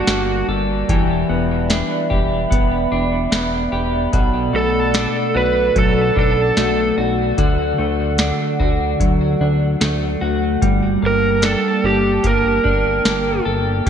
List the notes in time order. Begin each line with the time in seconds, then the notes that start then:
Already playing: G3 A#3 D4 F#4 D5 A5
0.07 G1 A#3, snare, closed hi-hat
0.48 G1 A4
0.89 E1 E3 G4 E5 B5, kick, closed hi-hat
1.29 E1 B3
1.70 D4, snare, closed hi-hat
2.10 E1 G4, kick
2.51 E1 B3, kick, closed hi-hat
2.92 E1 D4
3.32 E1 B3, snare, closed hi-hat
3.72 E1 G4
4.13 B1 B2 F#4 A4 F#5, kick, closed hi-hat
4.53 B1 A3 A4
4.94 D4, snare, closed hi-hat
5.35 B1 F#4 B4
5.76 B1 F#3 A4, kick, closed hi-hat
6.16 B1 D4 A4, kick
6.57 B1 A3, snare, closed hi-hat
6.98 B1 F#4
7.38 D2 D3 F#4 A4, kick, closed hi-hat
7.78 D2 A3
8.18 D4, snare, closed hi-hat
8.60 D2 F#4, kick
9.00 D2 F#3, kick, closed hi-hat
9.41 D2 D4
9.81 D2 A3, snare, closed hi-hat
10.21 D2 F#4
10.62 G1 G3 A#3 G5 A5, kick, closed hi-hat
11.02 G1 A#3
11.06 A#4
11.42 D4 A4, snare, closed hi-hat
11.84 G1 G4
12.23 G1 A#3 A#4, kick, closed hi-hat
12.64 G1 D4, kick
13.05 G1 A#3, snare, closed hi-hat
13.45 G1 A4
13.86 E3 B4 E5, kick